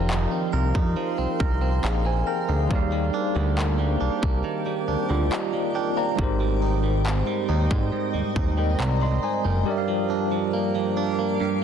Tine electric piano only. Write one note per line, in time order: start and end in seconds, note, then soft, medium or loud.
0.00 2.65 F3 medium
0.00 2.66 D#4 medium
0.00 1.80 G4 medium
0.00 1.81 A#4 medium
0.00 1.82 F5 medium
1.85 2.05 G#4 soft
1.85 2.05 F5 medium
2.06 2.27 C5 medium
2.06 2.26 G#5 medium
2.28 2.48 A#4 medium
2.28 2.48 G5 medium
2.49 2.91 G#4 soft
2.49 2.74 F5 medium
2.67 6.13 G3 medium
2.67 6.14 D#4 medium
2.67 4.84 G4 medium
2.73 4.85 D5 medium
2.73 4.86 F5 medium
5.11 5.31 F4 medium
5.11 5.31 D5 medium
5.32 5.74 G4 medium
5.32 5.73 D#5 medium
5.76 5.96 A#4 medium
5.76 5.96 G5 medium
5.97 6.39 D5 medium
5.97 6.38 A#5 medium
6.16 9.61 G#3 medium
6.16 9.62 D#4 medium
6.16 9.63 G4 medium
6.21 8.33 A#4 medium
6.21 8.34 C5 medium
8.59 8.79 A#4 medium
8.59 8.79 G5 medium
8.80 9.01 D5 medium
8.80 9.01 A#5 medium
9.02 9.23 D#5 medium
9.02 9.22 C6 medium
9.24 9.44 C5 medium
9.24 9.44 G#5 medium
9.46 9.66 A#4 medium
9.46 9.87 G5 medium
9.64 11.64 G3 medium
9.64 11.64 G4 medium
9.64 11.64 A#4 medium
9.70 11.64 D5 medium
9.70 9.75 E5 medium
9.78 11.64 F5 medium